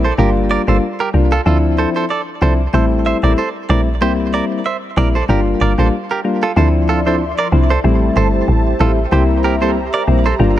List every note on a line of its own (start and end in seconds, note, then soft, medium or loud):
0.00 0.12 A#1 medium
0.04 0.13 A4 medium
0.04 0.13 C5 medium
0.18 0.58 G1 loud
0.18 0.63 G3 medium
0.18 0.63 A#3 medium
0.18 0.64 D4 medium
0.18 0.64 F4 loud
0.18 0.30 G4 medium
0.18 0.29 A#4 medium
0.51 0.62 A#4 medium
0.51 0.61 D5 medium
0.67 0.79 G1 medium
0.67 0.83 G3 medium
0.67 0.83 A#3 medium
0.67 0.83 D4 medium
0.67 0.83 F4 medium
0.67 0.77 A4 medium
0.67 0.77 C5 medium
1.00 1.09 G4 medium
1.00 1.09 A#4 medium
1.14 1.40 C2 medium
1.14 1.32 G3 medium
1.14 1.32 A#3 medium
1.14 1.33 D4 medium
1.14 1.33 F4 medium
1.32 1.41 F4 medium
1.32 1.40 A4 medium
1.46 1.86 D2 loud
1.46 2.05 F3 medium
1.46 2.05 C4 medium
1.46 2.05 D4 medium
1.46 2.05 E4 loud
1.46 1.57 F4 medium
1.46 1.57 A4 medium
1.78 1.89 A4 medium
1.78 1.89 C5 medium
1.96 2.05 A4 medium
1.96 2.04 C5 medium
2.10 2.21 A4 medium
2.10 2.21 D5 medium
2.41 2.67 C2 medium
2.41 2.60 F3 medium
2.41 2.60 C4 medium
2.41 2.60 D4 medium
2.41 2.60 E4 medium
2.41 2.53 A4 medium
2.41 2.53 C5 medium
2.73 3.14 A1 loud
2.73 3.19 G3 loud
2.73 3.19 A3 medium
2.73 3.19 C4 medium
2.73 3.19 E4 loud
2.73 2.85 A4 medium
2.73 2.84 C5 medium
3.06 3.17 C5 medium
3.06 3.16 E5 medium
3.23 3.35 A1 medium
3.23 3.39 G3 medium
3.23 3.39 A3 medium
3.23 3.39 C4 medium
3.23 3.39 E4 medium
3.23 3.33 A#4 medium
3.23 3.32 D5 medium
3.38 3.49 A4 medium
3.38 3.48 C5 medium
3.69 4.03 A#1 loud
3.69 3.88 G3 medium
3.69 3.88 A3 medium
3.69 3.88 C4 medium
3.69 3.88 E4 medium
3.69 3.81 A#4 medium
3.69 3.80 D5 medium
4.01 4.41 C2 loud
4.01 4.60 G3 medium
4.01 4.60 A#3 medium
4.01 4.61 C4 medium
4.01 4.61 E4 loud
4.01 4.13 G4 medium
4.01 4.12 C5 loud
4.34 4.45 A#4 medium
4.34 4.44 D5 medium
4.66 4.76 C5 medium
4.66 4.76 E5 medium
4.97 5.23 A#1 loud
4.97 5.15 G3 medium
4.97 5.15 A#3 medium
4.97 5.16 C4 medium
4.97 5.16 E4 medium
4.97 5.08 A#4 medium
4.97 5.08 D5 medium
5.15 5.24 A4 medium
5.15 5.24 C5 medium
5.29 5.55 G1 loud
5.29 5.74 G3 medium
5.29 5.74 A#3 medium
5.29 5.74 D4 medium
5.29 5.74 F4 loud
5.29 5.40 G4 medium
5.29 5.40 A#4 medium
5.61 5.75 G1 medium
5.61 5.72 A#4 medium
5.61 5.72 D5 medium
5.78 5.90 A1 medium
5.78 5.94 G3 medium
5.78 5.94 A#3 medium
5.78 5.94 D4 medium
5.78 5.94 F4 medium
5.78 5.88 A4 medium
5.78 5.87 C5 medium
6.11 6.20 G4 medium
6.11 6.19 A#4 medium
6.24 6.43 G3 medium
6.24 6.43 A#3 medium
6.24 6.43 D4 medium
6.24 6.43 F4 medium
6.43 6.52 F4 medium
6.43 6.51 A4 medium
6.56 7.34 D2 loud
6.56 7.02 F3 medium
6.56 7.83 F3 medium
6.56 7.02 C4 medium
6.56 7.02 D4 medium
6.56 7.02 E4 loud
6.56 6.68 A4 medium
6.56 6.67 C5 medium
6.56 7.83 D5 medium
6.56 7.83 E5 medium
6.56 7.83 C6 medium
6.89 7.00 F4 medium
6.89 6.99 A4 medium
7.06 7.22 F3 medium
7.06 7.22 C4 medium
7.06 7.22 D4 medium
7.06 7.22 E4 medium
7.06 7.16 A4 medium
7.06 7.15 C5 medium
7.39 7.47 A#4 medium
7.39 7.47 D5 medium
7.52 7.78 C2 loud
7.52 7.71 F3 medium
7.52 7.71 C4 medium
7.52 7.71 D4 medium
7.52 7.71 E4 medium
7.70 7.79 A4 medium
7.70 7.79 C5 medium
7.84 8.10 A1 loud
7.84 8.73 G3 loud
7.84 8.73 A3 medium
7.84 8.73 C4 medium
7.84 8.73 E4 loud
7.84 10.59 G4 medium
7.84 10.37 C5 medium
7.84 10.37 E5 medium
7.84 9.11 A5 medium
8.16 8.42 G1 medium
8.16 8.28 A4 medium
8.16 8.27 C5 medium
8.48 8.74 A1 loud
8.80 9.06 A1 loud
8.80 8.98 G3 medium
8.80 8.98 A3 medium
8.80 8.99 C4 medium
8.80 8.99 E4 medium
8.80 8.91 F4 medium
8.80 8.91 A4 medium
9.12 9.89 C2 loud
9.12 9.57 G3 medium
9.12 9.57 A#3 medium
9.12 9.57 C4 medium
9.12 9.57 E4 loud
9.12 9.23 G4 medium
9.12 9.23 C5 medium
9.12 10.59 A#5 medium
9.44 9.55 G4 medium
9.44 9.55 A#4 medium
9.61 9.77 G3 medium
9.61 9.77 A#3 medium
9.61 9.77 C4 medium
9.61 9.77 E4 medium
9.61 9.71 A4 medium
9.61 9.70 C5 medium
9.94 10.03 A#4 medium
9.94 10.02 D5 medium
10.07 10.33 A#1 medium
10.07 10.26 G3 medium
10.07 10.26 A#3 medium
10.07 10.26 C4 medium
10.07 10.26 E4 medium
10.26 10.35 A4 medium
10.26 10.34 C5 medium
10.39 10.59 G1 loud
10.39 10.59 G3 loud
10.39 10.59 A#3 medium
10.39 10.59 D4 medium
10.39 10.59 F4 loud
10.39 10.59 D5 medium
10.39 10.59 F5 medium